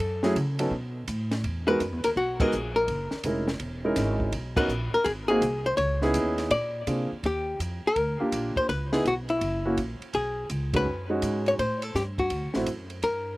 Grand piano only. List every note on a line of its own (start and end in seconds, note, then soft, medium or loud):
0.23 0.35 F#3 medium
0.23 0.35 A3 medium
0.23 0.35 C#4 medium
0.23 0.35 E4 medium
0.23 0.35 G#4 medium
0.59 0.71 F#3 medium
0.59 0.71 B3 medium
0.59 0.70 C#4 medium
0.59 0.71 D#4 medium
0.59 0.71 A4 medium
1.68 1.79 G#3 medium
1.68 1.79 B3 medium
1.68 1.80 D#4 medium
1.68 1.79 F#4 medium
1.68 1.79 A#4 medium
2.41 2.52 G#3 medium
2.41 2.52 B3 medium
2.41 2.52 D#4 medium
2.41 2.52 F#4 medium
2.41 2.52 A#4 medium
3.25 3.47 G#3 medium
3.25 3.47 C#4 medium
3.25 3.46 D#4 medium
3.25 3.47 E4 medium
3.25 3.47 A#4 medium
3.85 4.31 G#3 medium
3.85 4.31 C#4 medium
3.85 4.31 D#4 medium
3.85 4.31 E4 medium
3.85 4.31 A#4 medium
4.57 4.68 B3 medium
4.57 4.68 C#4 medium
4.57 4.68 D#4 medium
4.57 4.68 F#4 medium
4.57 4.68 A#4 medium
5.30 5.41 A#3 medium
5.30 5.41 C4 medium
5.30 5.41 D#4 medium
5.30 5.41 F#4 medium
5.30 5.41 G#4 medium
6.02 6.48 B3 medium
6.02 6.48 C#4 medium
6.02 6.49 D#4 medium
6.02 6.49 E4 medium
6.02 6.49 G#4 medium
6.87 7.08 A#3 soft
6.87 7.08 C4 soft
6.87 7.08 D4 soft
6.87 7.08 F4 soft
6.87 7.08 G#4 medium
8.20 8.66 A#3 medium
8.20 8.66 D4 medium
8.20 8.66 F4 medium
8.20 8.66 G4 medium
8.93 9.04 B3 medium
8.93 9.04 D#4 medium
8.93 9.04 E4 medium
8.93 9.04 G#4 medium
9.65 9.76 A#3 medium
9.65 9.76 C#4 medium
9.65 9.77 E4 medium
9.65 9.76 F#4 medium
10.74 10.85 G#3 medium
10.74 10.85 C#4 soft
10.74 10.85 D#4 soft
10.74 10.85 F#4 medium
11.10 11.56 G#3 medium
11.10 11.56 C#4 medium
11.10 11.56 D#4 medium
11.10 11.56 F#4 medium
12.55 12.66 A3 medium
12.55 12.66 C4 medium
12.55 12.66 E4 medium
12.55 12.66 F#4 medium